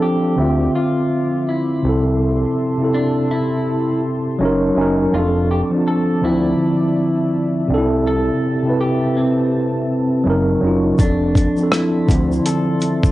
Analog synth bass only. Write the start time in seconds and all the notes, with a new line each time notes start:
0.38 D2
1.84 C2
4.40 F#1
4.77 F#1
5.13 F1
6.23 D2
7.70 C2
10.26 F#1
10.63 F#1
10.99 F1
12.09 D2